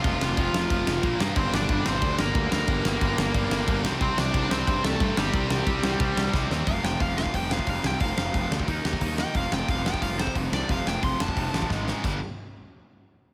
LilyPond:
<<
  \new Staff \with { instrumentName = "Overdriven electric guitar" } { \time 4/4 \key f \mixolydian \tempo 4 = 180 <f' f''>2.~ <f' f''>8 r8 | <c' c''>8 <d' d''>4 <c' c''>4 <bes bes'>4 <bes bes'>8~ | <bes bes'>2.~ <bes bes'>8 r8 | <c' c''>8 <d' d''>4 <c' c''>4 <a a'>4 <g g'>8~ |
<g g'>2.~ <g g'>8 r8 | f''8 g''8 f''8 f''8 g''8 f''8 f''8 g''8 | f''8 f''4 r2 g''8 | f''8 g''8 f''8 g''8 f''8 c''8 r8 d''8 |
f''8 g''8 c'''8 a''4. r4 | r1 | }
  \new Staff \with { instrumentName = "Distorted electric guitar" } { \clef bass \time 4/4 \key f \mixolydian <f, c f>4 <f, c f>8 <f, c f>8 <f, c f>4 <bes, f bes>8 <bes, f bes>8 | <g, d g>4 <g, d g>8 <g, d g>8 <g, d g>4 <g, d g>8 <g, d g>8 | <g, d g>4 <g, d g>8 <g, d g>8 <g, d g>4 <g, d g>8 <c g c'>8 | <c g c'>4 <c g c'>8 <c g c'>8 <c g c'>4 <c g c'>8 <c g c'>8 |
<c g c'>4 <c g c'>8 <c g c'>8 <c g c'>4 <c g c'>8 <c g c'>8 | r1 | r1 | r1 |
r1 | r1 | }
  \new Staff \with { instrumentName = "Distorted electric guitar" } { \clef bass \time 4/4 \key f \mixolydian <f, c f>4 <f, c f>8 <f, c f>8 <f, c f>4 <bes, f bes>8 <bes, f bes>8 | <g, d g>4 <g, d g>8 <g, d g>8 <g, d g>4 <g, d g>8 <g, d g>8 | <g, d g>4 <g, d g>8 <g, d g>8 <g, d g>4 <g, d g>8 <c g c'>8 | <c g c'>4 <c g c'>8 <c g c'>8 <c g c'>4 <c g c'>8 <c g c'>8 |
<c g c'>4 <c g c'>8 <c g c'>8 <c g c'>4 <c g c'>8 <c g c'>8 | <f, c f>8 <f, c f>8 <f, c f>8 <f, c f>8 <f, c f>8 <f, c f>8 <f, c f>8 <f, c f>8 | <f, c f>8 <f, c f>8 <f, c f>8 <f, c f>8 <ees bes ees'>8 <ees bes ees'>8 <ees bes ees'>8 <ees bes ees'>8 | <f, c f>8 <f, c f>8 <f, c f>8 <f, c f>8 <f, c f>8 <f, c f>8 <f, c f>8 <f, c f>8 |
<f, c f>8 <f, c f>8 <f, c f>8 <f, c f>8 <f, c f>8 <f, c f>8 <aes, ees aes>8 <aes, ees aes>8 | <g, d g>8 r2. r8 | }
  \new Staff \with { instrumentName = "Distorted electric guitar" } { \clef bass \time 4/4 \key f \mixolydian <f, c f>4 <f, c f>8 <f, c f>8 <f, c f>4 <bes, f bes>8 <bes, f bes>8 | <g, d g>4 <g, d g>8 <g, d g>8 <g, d g>4 <g, d g>8 <g, d g>8 | <g, d g>4 <g, d g>8 <g, d g>8 <g, d g>4 <g, d g>8 <c g c'>8 | <c g c'>4 <c g c'>8 <c g c'>8 <c g c'>4 <c g c'>8 <c g c'>8 |
<c g c'>4 <c g c'>8 <c g c'>8 <c g c'>4 <c g c'>8 <c g c'>8 | <f, c f>8 <f, c f>8 <f, c f>8 <f, c f>8 <f, c f>8 <f, c f>8 <f, c f>8 <f, c f>8 | <f, c f>8 <f, c f>8 <f, c f>8 <f, c f>8 <ees bes ees'>8 <ees bes ees'>8 <ees bes ees'>8 <ees bes ees'>8 | <f, c f>8 <f, c f>8 <f, c f>8 <f, c f>8 <f, c f>8 <f, c f>8 <f, c f>8 <f, c f>8 |
<f, c f>8 <f, c f>8 <f, c f>8 <f, c f>8 <f, c f>8 <f, c f>8 <aes, ees aes>8 <aes, ees aes>8 | <g, d g>8 r2. r8 | }
  \new Staff \with { instrumentName = "Picked electric bass" } { \clef bass \time 4/4 \key f \mixolydian f,,8 f,,8 f,,8 f,,8 f,,8 f,,8 bes,,8 g,8 | g,,8 g,,8 g,,8 g,,8 d,8 g,,8 d,8 d,8 | g,,8 g,,8 g,,8 g,,8 g,,8 g,,8 g,,8 c,8 | c,8 c,8 c,8 c,8 g,8 c,8 g,8 g,,8 |
c,8 c,8 c,8 c,8 c,8 c,8 c,8 ees,8 | f,,8 f,,8 f,,4 f,,4 f,,8 c,8 | f,,8 f,,8 f,,8 d,8 ees,8 ees,8 ees,4 | f,,8 f,,8 f,,4 f,,4 f,,8 c,8 |
f,,8 f,,8 f,,8 f,,8 f,,8 a,,8 aes,,4 | g,,8 r2. r8 | }
  \new DrumStaff \with { instrumentName = "Drums" } \drummode { \time 4/4 <cymc bd>8 sn8 <cymc bd>8 sn8 <cymc bd>8 sn8 <cymc bd>8 sn8 | <cymc bd>8 sn8 <cymc bd>8 sn8 <cymc bd>8 sn8 <cymc bd>8 sn8 | <cymc bd>8 sn8 <cymc bd>8 sn8 <cymc bd>8 sn8 <cymc bd>8 sn8 | <cymc bd>8 sn8 <cymc bd>8 sn8 <cymc bd>8 sn8 <cymc bd>8 sn8 |
<cymc bd>8 sn8 <cymc bd>8 sn8 <cymc bd>8 sn8 <bd sn>8 sn8 | <hho bd>8 sn8 <hho bd>8 sn16 bd16 <hho bd>8 sn16 bd16 <hho bd>8 sn8 | <hho bd>8 sn8 <hho bd>8 sn16 bd16 <hho bd>8 sn16 bd16 <hho bd>8 sn8 | <hho bd>8 sn8 <hho bd>8 sn16 bd16 <hho bd>8 sn16 bd16 <hho bd>8 sn8 |
<hho bd>8 sn8 <hho bd>8 sn16 bd16 <hho bd>8 sn16 bd16 <bd sn>8 sn8 | <cymc bd>4 r4 r4 r4 | }
>>